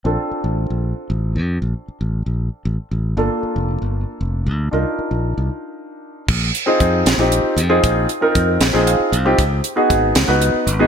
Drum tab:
CC |------|------|------|------|
HH |------|------|------|------|
SD |------|------|------|------|
BD |------|------|------|------|

CC |x-----|------|------|
HH |-xxxxx|xxxxxx|xxxxxx|
SD |---o--|---o--|---o--|
BD |o-o---|o-o---|o-o---|